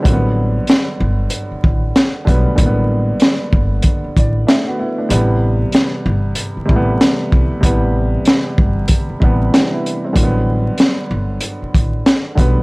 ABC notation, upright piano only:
X:1
M:4/4
L:1/16
Q:"Swing 16ths" 1/4=95
K:G
V:1 name="Upright piano"
C z12 z3 | z8 z2 d2 [A,De] [B,F] [B,Ef] [A,D]- | [A,D] z12 z3 | z12 [DG] [B,E]2 [G,C]- |
[G,C] z12 z3 |]
V:2 name="Upright piano" clef=bass
[D,F,G,_B,=B,]6 z8 [D,F,G,B,]2 | [D,F,G,_B,=B,]6 z8 z2 | [C,E,G,B,]6 z4 [C,E,G,A,B,]4 z2 | [C,E,G,B,]6 z4 [C,E,G,B,]4 z2 |
[D,F,G,_B,=B,]6 z8 [D,F,G,B,]2 |]